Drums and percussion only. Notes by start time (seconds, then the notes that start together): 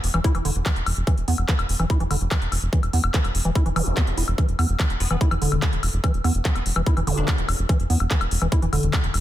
0.04 open hi-hat
0.14 closed hi-hat, high woodblock
0.24 kick, closed hi-hat
0.35 closed hi-hat, high woodblock
0.45 open hi-hat
0.55 closed hi-hat
0.66 kick, clap, closed hi-hat, high woodblock
0.76 closed hi-hat
0.86 open hi-hat, high woodblock
0.97 closed hi-hat
1.07 kick, closed hi-hat, high woodblock
1.17 closed hi-hat
1.28 open hi-hat
1.38 closed hi-hat, high woodblock
1.49 kick, clap, closed hi-hat
1.59 closed hi-hat, high woodblock
1.69 open hi-hat
1.80 closed hi-hat, high woodblock
1.90 kick, closed hi-hat
2.00 closed hi-hat
2.11 open hi-hat, high woodblock
2.21 closed hi-hat
2.31 kick, clap, closed hi-hat, high woodblock
2.42 closed hi-hat
2.52 open hi-hat, high woodblock
2.62 closed hi-hat
2.73 kick, closed hi-hat
2.83 closed hi-hat, high woodblock
2.93 open hi-hat
3.04 closed hi-hat, high woodblock
3.14 kick, clap, closed hi-hat
3.24 closed hi-hat, high woodblock
3.35 open hi-hat
3.45 closed hi-hat
3.55 kick, closed hi-hat, high woodblock
3.66 closed hi-hat
3.76 open hi-hat, high woodblock
3.86 closed hi-hat
3.97 kick, clap, closed hi-hat, high woodblock
4.07 closed hi-hat
4.17 open hi-hat
4.28 high woodblock
4.38 kick, closed hi-hat, high woodblock
4.49 closed hi-hat
4.59 open hi-hat, high woodblock
4.69 closed hi-hat
4.80 kick, clap, closed hi-hat, high woodblock
4.90 closed hi-hat
5.00 open hi-hat
5.11 closed hi-hat, high woodblock
5.21 kick, closed hi-hat
5.31 closed hi-hat, high woodblock
5.42 open hi-hat
5.52 closed hi-hat, high woodblock
5.62 kick, clap, closed hi-hat
5.73 closed hi-hat
5.83 open hi-hat, high woodblock
5.93 closed hi-hat
6.04 kick, closed hi-hat, high woodblock
6.14 closed hi-hat
6.24 open hi-hat, high woodblock
6.35 closed hi-hat
6.45 kick, clap, closed hi-hat
6.55 closed hi-hat, high woodblock
6.66 open hi-hat
6.76 closed hi-hat, high woodblock
6.86 kick, closed hi-hat
6.97 closed hi-hat, high woodblock
7.07 open hi-hat
7.18 closed hi-hat
7.28 kick, clap, closed hi-hat, high woodblock
7.38 closed hi-hat
7.49 open hi-hat, high woodblock
7.59 closed hi-hat
7.69 kick, closed hi-hat, high woodblock
7.80 closed hi-hat
7.90 open hi-hat
8.00 closed hi-hat, high woodblock
8.11 kick, clap, closed hi-hat
8.21 closed hi-hat, high woodblock
8.31 open hi-hat
8.42 closed hi-hat, high woodblock
8.52 kick, closed hi-hat
8.62 closed hi-hat
8.73 open hi-hat, high woodblock
8.83 closed hi-hat
8.93 kick, clap, closed hi-hat, high woodblock
9.04 closed hi-hat
9.14 open hi-hat, high woodblock